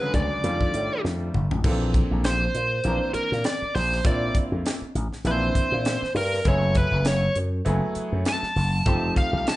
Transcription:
Already playing: B4
0.01 C#3 D3 F#3 G#3 B3
0.14 D2 D5, kick, closed hi-hat
0.44 F2 D#3 G3 A3 D4 F4, closed hi-hat
0.61 kick
0.74 A2, closed hi-hat
1.04 F2, snare
1.34 G1, mid tom
1.51 A1, floor tom
1.64 A#1 E3 A#3 C4 D4 A4, kick, crash
1.94 kick, closed hi-hat
2.11 A#1
2.24 C5, snare, closed hi-hat
2.55 A#2, closed hi-hat
2.84 A#1 E3 A#3 C4 D4 A#4, closed hi-hat
3.14 A#4, muted slap bass stroke, closed hi-hat
3.32 A#2, snare
3.44 D5, snare, closed hi-hat
3.62 muted slap bass stroke
3.75 A#1 C5, snare, open hi-hat
3.92 snare
4.04 A#2 A#3 C4 D4 E4 F4 D5, kick, closed hi-hat
4.35 kick, closed hi-hat
4.52 F2
4.66 snare, closed hi-hat
4.82 muted slap bass stroke
4.95 A1, closed hi-hat
5.13 snare
5.24 A#1 E3 A#3 C4 D4 E4 C5, closed hi-hat
5.55 kick, closed hi-hat
5.72 A#2
5.85 snare, closed hi-hat
6.02 muted slap bass stroke, snare
6.14 G2 A#4, open hi-hat
6.34 snare
6.45 F#1 F#3 A3 B3 E4 G#4 C#5, kick, closed hi-hat
6.75 B4, kick, closed hi-hat
6.91 F#1
7.05 C#5, snare, closed hi-hat
7.35 F#2, closed hi-hat
7.65 F#1 F#3 A3 B3 E4 G#4, closed hi-hat
7.95 muted slap bass stroke, closed hi-hat
8.12 F#2
8.25 A5, snare, closed hi-hat
8.43 muted slap bass stroke, snare
8.56 F#1, snare, open hi-hat
8.86 F1 F3 A3 C4 D#4 G4, kick, closed hi-hat
9.16 F5, kick, closed hi-hat
9.33 C2
9.47 A5, snare, closed hi-hat

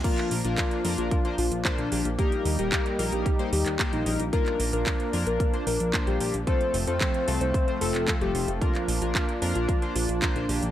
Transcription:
0.04 F3 A#3 D4 F4 A#4, kick, closed hi-hat, crash
0.18 clap, closed hi-hat
0.31 A#1, open hi-hat
0.44 A#1 A#3 D4 F4 A#4, closed hi-hat
0.58 kick, clap, closed hi-hat
0.71 closed hi-hat
0.85 F2 A#3 D4 F4 A#4, open hi-hat
0.98 A#1 F4, closed hi-hat
1.11 kick, closed hi-hat
1.25 A#3 D4 F4 C5, closed hi-hat
1.38 A#1 F4, open hi-hat
1.52 A#1, closed hi-hat
1.65 A#3 D4 F4 C5, kick, clap, closed hi-hat
1.78 A#1 D4, closed hi-hat
1.92 A#1 A#3 D4 F4 G4, open hi-hat
2.05 A#1, closed hi-hat
2.19 G3 A#3 D#4 G4 A#4, kick, closed hi-hat
2.32 closed hi-hat
2.45 D#2, open hi-hat
2.59 D#1 A#3 D#4 G4 A#4, closed hi-hat
2.72 kick, clap, closed hi-hat
2.86 closed hi-hat
2.99 A#1 A#3 D#4 G4 A#4, open hi-hat
3.12 A#1 G4, closed hi-hat
3.26 kick, closed hi-hat
3.39 A#3 D#4 G4 C5, closed hi-hat
3.53 D#2 G4, open hi-hat
3.66 D#2, clap, closed hi-hat
3.79 A#3 D#4 G4 C5, kick, clap, closed hi-hat
3.93 A#1 D#4, closed hi-hat
4.06 A#1 A#3 D#4 G4 A#4, open hi-hat
4.19 A#1, closed hi-hat
4.33 F3 A#3 D4 F4 A#4, kick, closed hi-hat
4.46 clap, closed hi-hat
4.60 A#1, open hi-hat
4.73 A#1 A#3 D4 F4 A#4, closed hi-hat
4.86 kick, clap, closed hi-hat
5.00 closed hi-hat
5.13 F2 A#3 D4 F4 A#4, open hi-hat
5.27 A#1 A#4, closed hi-hat
5.40 kick, closed hi-hat
5.54 A#3 D4 F4 C5, closed hi-hat
5.67 A#1 A#4, open hi-hat
5.80 A#1, closed hi-hat
5.94 A#3 D4 F4 C5, kick, clap, closed hi-hat
6.07 A#1 G4, closed hi-hat
6.20 A#1 A#3 D4 F4 G4, open hi-hat
6.34 A#1, closed hi-hat
6.47 A3 C4 F4 A4 C5, kick, closed hi-hat
6.61 closed hi-hat
6.74 F1, open hi-hat
6.87 F2 A3 C4 F4 A4 C5, closed hi-hat
7.01 kick, clap, closed hi-hat
7.14 closed hi-hat
7.28 C2 A3 C4 F4 A4, open hi-hat
7.41 C2 C5, closed hi-hat
7.54 kick, closed hi-hat
7.68 A3 C4 F4 C5, closed hi-hat
7.81 F1 A3 C4 F4 A4, open hi-hat
7.95 F1, clap, closed hi-hat
8.08 kick, clap, closed hi-hat
8.21 F1 A3 C4 F4 G4 A4, closed hi-hat
8.35 F1 A3 C4 F4 A4, open hi-hat
8.48 F1, closed hi-hat
8.61 A#3 D4 F4 A#4, kick, closed hi-hat
8.75 clap, closed hi-hat
8.88 A#1, open hi-hat
9.02 A#1 A#3 D4 F4 A#4, closed hi-hat
9.15 kick, clap, closed hi-hat
9.29 closed hi-hat
9.42 F2 A#3 D4 F4 A#4, open hi-hat
9.55 A#1 F4, closed hi-hat
9.69 kick, closed hi-hat
9.82 A#3 D4 F4 C5, closed hi-hat
9.95 A#1 F4, open hi-hat
10.09 A#1, closed hi-hat
10.22 A#3 D4 F4 C5, kick, clap, closed hi-hat
10.36 A#1 D4, closed hi-hat
10.49 A#1 A#3 D4 F4 G4, open hi-hat
10.62 A#1, closed hi-hat

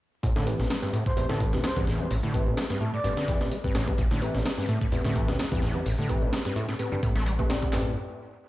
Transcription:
0.23 A1 A2, kick, closed hi-hat
0.35 A2 D3, snare
0.46 E3 C4 G4 B4, closed hi-hat
0.59 A1 A2, snare
0.70 A3, snare, closed hi-hat
0.82 G2 C4 G4 B4, snare
0.93 A2, closed hi-hat
1.06 A2 C5, kick
1.16 E2 A2 C4 G4 B4 C5, closed hi-hat
1.29 A2 D3, snare
1.40 E3, kick, closed hi-hat
1.53 D2 A2 C4 G4 B4, snare
1.63 A3 C5, snare, closed hi-hat
1.76 E2 G2 C4 G4 B4, kick
1.87 A2, snare, closed hi-hat
2.00 A3 C4 G4 B4
2.10 A1 A2, open hi-hat
2.23 A2 D3
2.34 E3 C4 G4 B4, kick, closed hi-hat
2.46 A1 A2
2.57 A3, snare, closed hi-hat
2.70 G2 C4 G4 B4, snare
2.81 A2
2.93 A2 D5
3.04 G1 A2 C4 G4 B4, closed hi-hat
3.17 D3, snare
3.28 E2 E3, kick, closed hi-hat
3.40 A2 C4 G4 B4, snare
3.51 A3, closed hi-hat
3.64 G2 C4 G4 B4, kick
3.75 A1 A2, snare, closed hi-hat
3.87 A3 C4 G4 B4, kick
3.98 A1 A2, kick, closed hi-hat
4.11 A2 D3, snare
4.22 E3 C4 G4 B4, closed hi-hat
4.34 A1 A2, snare
4.45 A3, snare, closed hi-hat
4.58 G2 C4 G4 B4, snare
4.68 A2, closed hi-hat
4.81 A2, kick
4.92 E2 A2 C4 G4 B4, closed hi-hat
5.04 A2 D3, snare
5.15 E3, kick, closed hi-hat
5.28 D2 A2 C4 G4 B4, snare
5.39 A3, snare, closed hi-hat
5.51 E2 G2 C4 G4 B4, kick
5.62 A2, snare, closed hi-hat
5.75 A3 C4 G4 B4
5.86 A1 A2, open hi-hat
5.98 A2 D3
6.09 E3 C4 G4 B4, kick, closed hi-hat
6.22 A1 A2
6.33 A3, snare, closed hi-hat
6.45 G2 C4 G4 B4, snare
6.56 A2, closed hi-hat
6.69 A2, snare
6.79 A2 C4 G4 B4, closed hi-hat
6.92 G2 D3
7.03 A2, kick, closed hi-hat
7.15 A1 A3, snare
7.26 G3, closed hi-hat
7.39 A3 C4 G4 B4, kick
7.49 A2 C4 G4 D5, snare, closed hi-hat
7.62 A2, kick
7.73 A1 A2 C4 G4 B4, snare, clap, floor tom

